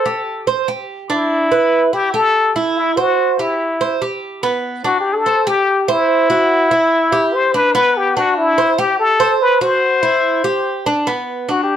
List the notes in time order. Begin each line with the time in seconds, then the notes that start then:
Already playing: A4
0.06 G4
0.47 C5
0.68 G4
1.10 D4 E4
1.52 B4
1.93 E4 G4
2.14 G4 A4
2.56 E4
2.77 E4
2.97 F#4 C5
3.39 E4 G4
3.81 C5
4.02 G4
4.43 B3
4.84 D4 F#4
5.00 G4
5.13 A4
5.26 C5
5.47 G4
5.88 E4 C5
6.30 F#4
6.71 E4
7.12 G4
7.34 C5
7.54 D4 B4
7.75 B3 B4
7.97 G4
8.17 D4 F#4
8.38 E4
8.58 C5
8.78 G4
9.00 A4
9.20 C5
9.41 B4
9.61 F#4 C5
10.03 E4
10.44 G4
10.86 D4
11.07 B3
11.49 D4 F#4
11.63 G4